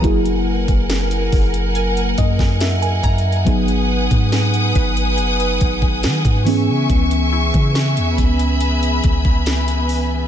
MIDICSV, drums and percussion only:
0, 0, Header, 1, 2, 480
1, 0, Start_track
1, 0, Tempo, 857143
1, 21, Time_signature, 4, 2, 24, 8
1, 5756, End_track
2, 0, Start_track
2, 0, Title_t, "Drums"
2, 22, Note_on_c, 9, 36, 127
2, 22, Note_on_c, 9, 42, 72
2, 78, Note_off_c, 9, 36, 0
2, 78, Note_off_c, 9, 42, 0
2, 143, Note_on_c, 9, 42, 50
2, 199, Note_off_c, 9, 42, 0
2, 382, Note_on_c, 9, 36, 97
2, 382, Note_on_c, 9, 42, 55
2, 438, Note_off_c, 9, 36, 0
2, 438, Note_off_c, 9, 42, 0
2, 502, Note_on_c, 9, 38, 106
2, 502, Note_on_c, 9, 42, 70
2, 558, Note_off_c, 9, 38, 0
2, 558, Note_off_c, 9, 42, 0
2, 622, Note_on_c, 9, 42, 53
2, 678, Note_off_c, 9, 42, 0
2, 742, Note_on_c, 9, 36, 97
2, 742, Note_on_c, 9, 46, 51
2, 798, Note_off_c, 9, 36, 0
2, 798, Note_off_c, 9, 46, 0
2, 862, Note_on_c, 9, 42, 50
2, 918, Note_off_c, 9, 42, 0
2, 980, Note_on_c, 9, 42, 72
2, 1036, Note_off_c, 9, 42, 0
2, 1103, Note_on_c, 9, 42, 56
2, 1159, Note_off_c, 9, 42, 0
2, 1220, Note_on_c, 9, 42, 62
2, 1223, Note_on_c, 9, 36, 84
2, 1276, Note_off_c, 9, 42, 0
2, 1279, Note_off_c, 9, 36, 0
2, 1340, Note_on_c, 9, 36, 85
2, 1345, Note_on_c, 9, 38, 67
2, 1396, Note_off_c, 9, 36, 0
2, 1401, Note_off_c, 9, 38, 0
2, 1459, Note_on_c, 9, 42, 84
2, 1462, Note_on_c, 9, 38, 116
2, 1515, Note_off_c, 9, 42, 0
2, 1518, Note_off_c, 9, 38, 0
2, 1582, Note_on_c, 9, 42, 60
2, 1638, Note_off_c, 9, 42, 0
2, 1699, Note_on_c, 9, 36, 85
2, 1700, Note_on_c, 9, 46, 57
2, 1701, Note_on_c, 9, 42, 57
2, 1755, Note_off_c, 9, 36, 0
2, 1756, Note_off_c, 9, 46, 0
2, 1757, Note_off_c, 9, 42, 0
2, 1782, Note_on_c, 9, 42, 47
2, 1838, Note_off_c, 9, 42, 0
2, 1861, Note_on_c, 9, 42, 35
2, 1917, Note_off_c, 9, 42, 0
2, 1941, Note_on_c, 9, 36, 126
2, 1941, Note_on_c, 9, 42, 74
2, 1997, Note_off_c, 9, 36, 0
2, 1997, Note_off_c, 9, 42, 0
2, 2062, Note_on_c, 9, 42, 50
2, 2118, Note_off_c, 9, 42, 0
2, 2302, Note_on_c, 9, 36, 96
2, 2302, Note_on_c, 9, 42, 58
2, 2358, Note_off_c, 9, 36, 0
2, 2358, Note_off_c, 9, 42, 0
2, 2421, Note_on_c, 9, 38, 95
2, 2421, Note_on_c, 9, 42, 66
2, 2477, Note_off_c, 9, 38, 0
2, 2477, Note_off_c, 9, 42, 0
2, 2542, Note_on_c, 9, 42, 57
2, 2598, Note_off_c, 9, 42, 0
2, 2662, Note_on_c, 9, 36, 98
2, 2663, Note_on_c, 9, 42, 70
2, 2718, Note_off_c, 9, 36, 0
2, 2719, Note_off_c, 9, 42, 0
2, 2782, Note_on_c, 9, 42, 50
2, 2838, Note_off_c, 9, 42, 0
2, 2899, Note_on_c, 9, 42, 73
2, 2955, Note_off_c, 9, 42, 0
2, 3023, Note_on_c, 9, 42, 52
2, 3079, Note_off_c, 9, 42, 0
2, 3140, Note_on_c, 9, 42, 64
2, 3143, Note_on_c, 9, 36, 87
2, 3196, Note_off_c, 9, 42, 0
2, 3199, Note_off_c, 9, 36, 0
2, 3260, Note_on_c, 9, 36, 81
2, 3316, Note_off_c, 9, 36, 0
2, 3378, Note_on_c, 9, 42, 77
2, 3382, Note_on_c, 9, 38, 119
2, 3434, Note_off_c, 9, 42, 0
2, 3438, Note_off_c, 9, 38, 0
2, 3499, Note_on_c, 9, 36, 94
2, 3501, Note_on_c, 9, 42, 61
2, 3555, Note_off_c, 9, 36, 0
2, 3557, Note_off_c, 9, 42, 0
2, 3621, Note_on_c, 9, 46, 59
2, 3677, Note_off_c, 9, 46, 0
2, 3862, Note_on_c, 9, 36, 126
2, 3862, Note_on_c, 9, 42, 73
2, 3918, Note_off_c, 9, 36, 0
2, 3918, Note_off_c, 9, 42, 0
2, 3982, Note_on_c, 9, 42, 51
2, 4038, Note_off_c, 9, 42, 0
2, 4223, Note_on_c, 9, 36, 101
2, 4223, Note_on_c, 9, 42, 56
2, 4279, Note_off_c, 9, 36, 0
2, 4279, Note_off_c, 9, 42, 0
2, 4341, Note_on_c, 9, 42, 65
2, 4342, Note_on_c, 9, 38, 101
2, 4397, Note_off_c, 9, 42, 0
2, 4398, Note_off_c, 9, 38, 0
2, 4463, Note_on_c, 9, 42, 56
2, 4519, Note_off_c, 9, 42, 0
2, 4582, Note_on_c, 9, 36, 99
2, 4583, Note_on_c, 9, 42, 68
2, 4638, Note_off_c, 9, 36, 0
2, 4639, Note_off_c, 9, 42, 0
2, 4701, Note_on_c, 9, 42, 49
2, 4757, Note_off_c, 9, 42, 0
2, 4819, Note_on_c, 9, 42, 73
2, 4875, Note_off_c, 9, 42, 0
2, 4944, Note_on_c, 9, 42, 52
2, 5000, Note_off_c, 9, 42, 0
2, 5060, Note_on_c, 9, 42, 64
2, 5063, Note_on_c, 9, 36, 88
2, 5116, Note_off_c, 9, 42, 0
2, 5119, Note_off_c, 9, 36, 0
2, 5179, Note_on_c, 9, 36, 85
2, 5235, Note_off_c, 9, 36, 0
2, 5299, Note_on_c, 9, 42, 82
2, 5302, Note_on_c, 9, 38, 122
2, 5355, Note_off_c, 9, 42, 0
2, 5358, Note_off_c, 9, 38, 0
2, 5420, Note_on_c, 9, 42, 62
2, 5476, Note_off_c, 9, 42, 0
2, 5539, Note_on_c, 9, 46, 60
2, 5595, Note_off_c, 9, 46, 0
2, 5756, End_track
0, 0, End_of_file